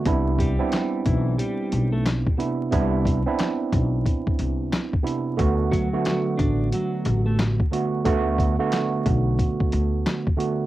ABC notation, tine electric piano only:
X:1
M:4/4
L:1/16
Q:"Swing 16ths" 1/4=90
K:Dmix
V:1 name="Tine electric piano"
[C,B,DE]3 [B,CDE]8- [B,CDE]2 z [C,B,DE]2 | [C,B,DE]3 [B,CDE]8- [B,CDE]2 z [C,B,DE]2 | [D,A,B,F]3 [D,A,B,F]8- [D,A,B,F]2 z [D,A,B,F]2 | [D,A,B,F]3 [D,A,B,F]8- [D,A,B,F]2 z [D,A,B,F]2 |]